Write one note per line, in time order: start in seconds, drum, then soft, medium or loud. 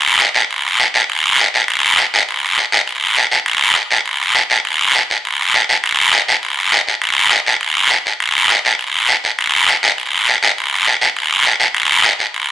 0.20 short guiro medium
0.34 short guiro medium
0.51 long guiro medium
0.80 short guiro medium
0.94 short guiro medium
1.10 long guiro medium
1.39 short guiro medium
1.54 short guiro medium
1.68 long guiro medium
1.98 short guiro medium
2.14 short guiro medium
2.29 long guiro medium
2.58 short guiro medium
2.72 short guiro medium
2.87 long guiro medium
3.17 short guiro medium
3.31 short guiro medium
3.46 long guiro medium
3.75 short guiro medium
3.91 short guiro medium
4.06 long guiro medium
4.35 short guiro medium
4.50 short guiro medium
4.65 long guiro medium
4.95 short guiro medium
5.10 short guiro medium
5.25 long guiro medium
5.54 short guiro medium
5.69 short guiro medium
5.84 long guiro medium
6.13 short guiro medium
6.28 short guiro medium
6.43 long guiro medium
6.72 short guiro medium
6.87 short guiro medium
7.02 long guiro medium
7.31 short guiro medium
7.46 short guiro medium
7.61 long guiro medium
7.90 short guiro medium
8.06 short guiro medium
8.20 long guiro medium
8.50 short guiro medium
8.65 short guiro medium
8.79 long guiro medium
9.09 short guiro medium
9.24 short guiro medium
9.39 long guiro medium
9.69 short guiro medium
9.83 short guiro medium
9.98 long guiro medium
10.28 short guiro medium
10.43 short guiro medium
10.58 long guiro medium
10.87 short guiro medium
11.01 short guiro medium
11.17 long guiro medium
11.46 short guiro medium
11.60 short guiro medium
11.74 long guiro medium
12.04 short guiro medium
12.19 short guiro medium
12.34 long guiro medium